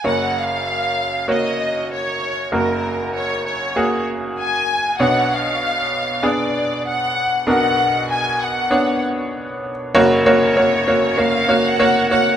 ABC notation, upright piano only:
X:1
M:4/4
L:1/8
Q:"Swing 16ths" 1/4=97
K:F#
V:1 name="Upright piano"
[A,Fc]3 z [A,Fc]3 z | [A,FA]3 z [A,FG]3 z | [B,=Dc]3 z [B,DG]3 z | [B,=DA]3 z [B,Dc]3 z |
[A,Fc] [A,Fc] [A,Fc] [A,Fc] [A,Fc] [A,Fc] [A,Fc] [A,Fc] |]
V:2 name="Upright piano" clef=bass
[F,,,F,,]8 | [F,,,F,,]8 | [B,,,B,,]8 | [B,,,B,,]8 |
[F,,,F,,]8 |]